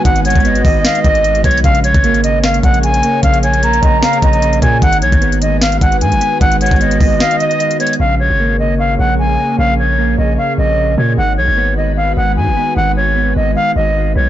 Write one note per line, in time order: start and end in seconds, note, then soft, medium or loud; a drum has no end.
0.00 0.05 D#3 loud
0.00 1.61 G#3 medium
0.00 0.44 B3 medium
0.00 1.61 F#4 medium
0.00 1.61 B4 medium
0.05 0.34 G#1 loud
0.05 0.23 D#3 loud
0.05 0.20 F#5 loud
0.05 kick loud
0.05 closed hi-hat medium
0.16 closed hi-hat medium
0.24 0.63 D#3 medium
0.24 0.62 C#5 medium
0.24 0.44 F#5 medium
0.24 closed hi-hat medium
0.30 closed hi-hat medium
0.36 0.64 G#1 loud
0.36 kick loud
0.36 closed hi-hat medium
0.40 1.43 B3 loud
0.40 closed hi-hat soft
0.45 1.60 D#5 loud
0.45 closed hi-hat medium
0.55 closed hi-hat medium
0.64 0.84 G#1 loud
0.64 0.84 D#3 medium
0.64 0.80 D#5 medium
0.64 kick loud
0.64 open hi-hat medium
0.84 1.04 D#3 medium
0.84 1.00 F5 medium
0.84 snare loud
0.84 closed hi-hat medium
0.95 closed hi-hat medium
1.04 1.43 G#1 loud
1.04 1.24 D#3 medium
1.04 1.42 D#5 medium
1.04 kick medium
1.04 closed hi-hat medium
1.15 closed hi-hat medium
1.24 1.64 D#3 medium
1.24 closed hi-hat medium
1.35 closed hi-hat medium
1.44 1.63 B1 loud
1.44 1.64 B3 medium
1.44 1.60 C#5 medium
1.44 kick loud
1.44 closed hi-hat medium
1.51 closed hi-hat medium
1.58 closed hi-hat medium
1.64 1.93 A#1 loud
1.64 1.83 C#3 loud
1.64 4.79 A#3 medium
1.64 4.79 G#4 medium
1.64 4.79 C#5 medium
1.64 1.79 F5 loud
1.64 kick loud
1.64 closed hi-hat medium
1.75 closed hi-hat medium
1.84 2.23 C#3 medium
1.84 2.21 C#5 medium
1.84 closed hi-hat medium
1.94 2.61 G#1 loud
1.94 kick loud
1.94 closed hi-hat medium
2.04 3.03 A#3 medium
2.04 closed hi-hat medium
2.14 closed hi-hat medium
2.24 2.42 C#3 medium
2.24 2.39 D#5 medium
2.24 closed hi-hat medium
2.43 2.62 C#3 medium
2.43 2.59 F5 medium
2.43 snare loud
2.43 closed hi-hat medium
2.54 closed hi-hat medium
2.63 3.02 A#1 loud
2.63 2.82 C#3 medium
2.63 2.79 F#5 medium
2.63 kick medium
2.63 closed hi-hat medium
2.74 closed hi-hat soft
2.83 3.22 C#3 medium
2.83 3.21 G#5 medium
2.83 closed hi-hat medium
2.94 closed hi-hat medium
3.03 3.62 A#3 medium
3.03 closed hi-hat medium
3.23 3.80 A#1 loud
3.23 3.42 C#3 loud
3.23 3.39 F5 medium
3.23 kick loud
3.23 closed hi-hat medium
3.34 closed hi-hat medium
3.43 3.82 C#3 medium
3.43 3.80 C#5 medium
3.43 3.62 G#5 medium
3.43 closed hi-hat medium
3.54 closed hi-hat medium
3.63 4.61 A#3 medium
3.63 4.58 A#5 medium
3.63 closed hi-hat medium
3.73 closed hi-hat medium
3.83 4.02 A#1 loud
3.83 4.01 C#3 medium
3.83 3.98 D#5 medium
3.83 kick loud
3.83 closed hi-hat medium
4.03 4.21 C#3 medium
4.03 4.18 F5 medium
4.03 snare loud
4.03 closed hi-hat medium
4.13 closed hi-hat medium
4.22 4.61 A#1 loud
4.22 4.40 C#3 medium
4.22 4.60 D#5 medium
4.22 kick loud
4.22 closed hi-hat medium
4.33 closed hi-hat medium
4.42 4.82 C#3 medium
4.42 closed hi-hat medium
4.53 closed hi-hat medium
4.62 4.81 A#2 loud
4.62 4.82 A#3 medium
4.62 4.78 C#5 medium
4.62 4.81 G#5 medium
4.62 kick loud
4.62 closed hi-hat medium
4.82 5.03 G#1 loud
4.82 5.01 D#3 loud
4.82 7.97 G#3 medium
4.82 7.97 F#4 medium
4.82 7.97 B4 medium
4.82 4.97 F#5 loud
4.82 kick loud
4.82 closed hi-hat medium
4.93 closed hi-hat medium
5.02 5.12 B1 loud
5.02 5.40 D#3 medium
5.02 5.39 C#5 medium
5.02 closed hi-hat medium
5.12 5.79 G#1 loud
5.12 kick loud
5.12 closed hi-hat medium
5.22 6.20 B3 medium
5.22 closed hi-hat medium
5.32 closed hi-hat medium
5.42 5.61 D#3 medium
5.42 5.57 D#5 medium
5.42 closed hi-hat medium
5.62 5.81 D#3 medium
5.62 5.77 F5 medium
5.62 snare loud
5.62 closed hi-hat medium
5.72 closed hi-hat medium
5.81 6.03 G#1 loud
5.81 6.00 D#3 medium
5.81 5.97 F#5 medium
5.81 kick medium
5.81 closed hi-hat medium
5.92 closed hi-hat medium
6.01 6.13 G#2 loud
6.01 6.40 D#3 medium
6.01 6.39 G#5 medium
6.01 closed hi-hat medium
6.12 6.21 G#1 loud
6.12 closed hi-hat medium
6.21 6.79 B3 medium
6.21 closed hi-hat medium
6.41 6.70 G#1 loud
6.41 6.59 D#3 loud
6.41 6.56 F#5 loud
6.41 kick loud
6.41 closed hi-hat medium
6.52 closed hi-hat medium
6.60 6.99 D#3 medium
6.60 6.98 C#5 medium
6.60 6.80 F#5 medium
6.60 closed hi-hat medium
6.66 closed hi-hat medium
6.71 6.99 G#1 loud
6.71 kick loud
6.71 closed hi-hat medium
6.76 7.79 B3 medium
6.76 closed hi-hat soft
6.81 7.96 D#5 loud
6.81 closed hi-hat medium
6.91 closed hi-hat medium
7.00 7.20 G#1 loud
7.00 7.20 D#3 medium
7.00 7.16 D#5 medium
7.00 kick loud
7.00 open hi-hat medium
7.20 7.39 D#3 medium
7.20 7.36 F5 medium
7.20 snare loud
7.20 closed hi-hat medium
7.31 closed hi-hat medium
7.40 7.59 D#3 medium
7.40 7.78 D#5 medium
7.40 closed hi-hat medium
7.51 closed hi-hat soft
7.60 8.00 D#3 medium
7.60 closed hi-hat medium
7.71 closed hi-hat medium
7.80 8.00 B3 medium
7.80 7.95 C#5 medium
7.80 closed hi-hat medium
7.87 closed hi-hat medium
7.93 closed hi-hat medium
8.00 8.29 A#1 loud
8.00 8.18 C#3 medium
8.00 11.15 A#3 medium
8.00 11.15 G#4 medium
8.00 11.15 C#5 medium
8.00 8.15 F5 medium
8.20 8.58 C#3 medium
8.20 8.57 C#5 medium
8.30 8.96 G#1 medium
8.40 9.38 A#3 medium
8.59 8.77 C#3 medium
8.59 8.75 D#5 medium
8.78 8.97 C#3 medium
8.78 8.95 F5 medium
8.99 9.37 A#1 loud
8.99 9.18 C#3 medium
8.99 9.15 F#5 medium
9.19 9.57 C#3 medium
9.19 9.56 G#5 medium
9.39 9.97 A#3 medium
9.59 10.16 A#1 loud
9.59 9.77 C#3 medium
9.59 9.74 F5 medium
9.79 10.17 C#3 medium
9.79 10.16 C#5 medium
9.98 10.96 A#3 medium
10.18 10.37 A#1 loud
10.18 10.37 C#3 medium
10.18 10.34 D#5 medium
10.38 10.57 C#3 medium
10.38 10.54 F5 medium
10.58 10.96 A#1 loud
10.58 10.76 C#3 medium
10.58 10.95 D#5 medium
10.77 11.17 C#3 medium
10.98 11.17 A#2 loud
10.98 11.18 A#3 medium
10.98 11.13 C#5 medium
11.18 11.39 G#1 loud
11.18 11.36 D#3 medium
11.18 14.29 G#3 medium
11.18 14.29 F#4 medium
11.18 14.29 B4 medium
11.18 11.33 F#5 loud
11.37 11.48 B1 loud
11.37 11.76 D#3 medium
11.37 11.75 C#5 medium
11.48 12.14 G#1 loud
11.57 12.56 B3 medium
11.77 11.96 D#3 medium
11.77 11.93 D#5 medium
11.97 12.16 D#3 medium
11.97 12.12 F5 medium
12.17 12.38 G#1 loud
12.17 12.36 D#3 medium
12.17 12.32 F#5 medium
12.37 12.49 G#2 loud
12.37 12.75 D#3 medium
12.37 12.74 G#5 medium
12.47 12.56 G#1 loud
12.57 13.14 B3 medium
12.76 13.34 G#1 loud
12.76 12.95 D#3 medium
12.76 12.92 F#5 medium
12.96 13.35 D#3 medium
12.96 13.34 C#5 medium
13.16 14.14 B3 medium
13.36 13.55 G#1 loud
13.36 13.55 D#3 medium
13.36 13.52 D#5 medium
13.56 13.75 D#3 medium
13.56 13.71 F5 medium
13.76 14.14 G#1 loud
13.76 13.95 D#3 medium
13.76 14.13 D#5 medium
13.96 14.29 D#3 medium
14.15 14.29 B1 loud
14.15 14.29 B3 medium
14.15 14.29 C#5 medium